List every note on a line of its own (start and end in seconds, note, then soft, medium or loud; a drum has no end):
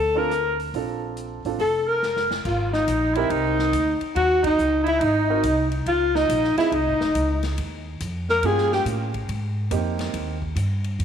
0.00 0.70 D2 medium
0.00 0.18 A4 medium
0.00 0.20 A4 medium
0.15 0.29 C4 medium
0.15 0.30 D4 medium
0.15 0.29 F4 medium
0.15 0.30 A4 medium
0.15 0.59 A#4 medium
0.15 0.60 A#4 medium
0.31 cross-stick soft
0.31 closed hi-hat soft
0.59 open hi-hat soft
0.74 1.41 A#1 medium
0.74 1.40 C4 soft
0.74 1.40 D4 soft
0.74 1.40 F4 soft
0.74 1.40 A4 medium
0.74 open hi-hat soft
1.17 closed hi-hat soft
1.45 1.58 A1 medium
1.45 1.59 C4 medium
1.45 1.59 D4 soft
1.45 1.59 F4 soft
1.45 1.59 A4 medium
1.45 open hi-hat soft
1.59 2.41 F1 medium
1.59 1.89 A4 medium
1.59 open hi-hat soft
1.87 2.30 A#4 medium
2.03 snare soft
2.16 snare soft
2.31 snare medium
2.45 2.87 G#1 medium
2.45 2.71 F4 medium
2.45 2.72 F4 medium
2.45 kick medium
2.45 crash medium
2.73 3.16 D#4 medium
2.73 3.18 D#4 medium
2.73 snare soft
2.87 3.29 A#1 medium
2.87 hi-hat pedal medium
2.87 ride medium
3.14 3.71 C4 medium
3.14 3.71 D#4 medium
3.14 3.32 E4 medium
3.14 3.71 G4 medium
3.14 3.71 A#4 medium
3.14 ride soft
3.30 3.72 C2 medium
3.30 4.01 D#4 medium
3.30 ride medium
3.59 snare soft
3.73 3.99 D2 medium
3.73 hi-hat pedal soft
3.73 ride medium
4.01 muted upright bass stroke soft
4.01 ride soft
4.15 4.57 D#2 medium
4.15 4.41 F#4 medium
4.15 4.42 F#4 medium
4.15 ride soft
4.43 4.83 D#4 medium
4.43 4.85 D#4 medium
4.43 kick medium
4.43 ride medium
4.58 5.00 C#2 medium
4.58 hi-hat pedal medium
4.84 5.01 E4 medium
4.84 ride soft
4.88 5.05 E4 medium
4.99 5.43 G#1 medium
4.99 5.71 D#4 medium
4.99 ride medium
5.04 5.73 D#4 medium
5.29 5.43 C4 medium
5.29 5.43 D#4 medium
5.29 5.43 F#4 medium
5.29 5.43 A#4 medium
5.43 5.85 C2 medium
5.43 hi-hat pedal soft
5.43 ride medium
5.72 ride soft
5.86 6.28 C#2 medium
5.86 6.17 F4 medium
5.86 ride medium
6.15 6.57 D#4 medium
6.15 6.58 D#4 medium
6.15 snare soft
6.29 6.55 A#1 medium
6.29 hi-hat pedal medium
6.29 ride medium
6.44 snare soft
6.57 6.71 C4 medium
6.57 6.71 D#4 medium
6.57 6.75 E4 medium
6.57 6.71 F4 medium
6.57 6.71 G#4 medium
6.57 muted upright bass stroke soft
6.57 snare soft
6.57 ride soft
6.72 6.88 C2 medium
6.72 7.43 D#4 medium
6.72 7.44 D#4 medium
6.72 ride soft
6.86 7.00 G#1 medium
7.01 7.14 F1 medium
7.01 snare soft
7.15 7.56 C#2 medium
7.15 hi-hat pedal soft
7.15 ride medium
7.43 snare soft
7.43 ride soft
7.58 7.99 D#2 medium
7.58 ride medium
8.00 8.42 F2 medium
8.00 hi-hat pedal medium
8.00 ride medium
8.29 8.47 A#4 medium
8.29 8.48 A#4 medium
8.29 snare soft
8.43 8.84 G2 medium
8.43 9.09 A#3 medium
8.43 9.09 C#4 medium
8.43 9.09 F4 medium
8.43 9.09 G4 medium
8.43 8.72 G#4 medium
8.43 8.73 G#4 medium
8.43 ride medium
8.58 snare soft
8.72 8.86 G4 medium
8.72 snare soft
8.85 9.27 A2 medium
8.85 hi-hat pedal soft
8.85 ride medium
9.14 kick soft
9.14 ride soft
9.28 9.70 G#2 medium
9.28 ride medium
9.71 10.12 F2 medium
9.71 10.36 A#3 medium
9.71 10.36 C4 medium
9.71 10.36 D#4 medium
9.71 10.37 G4 medium
9.71 hi-hat pedal soft
9.71 ride medium
9.99 snare soft
9.99 ride soft
10.14 10.55 D#2 medium
10.14 ride medium
10.42 kick soft
10.56 10.97 G2 medium
10.56 hi-hat pedal soft
10.56 ride medium
10.84 ride soft
10.99 11.05 F2 medium
10.99 ride medium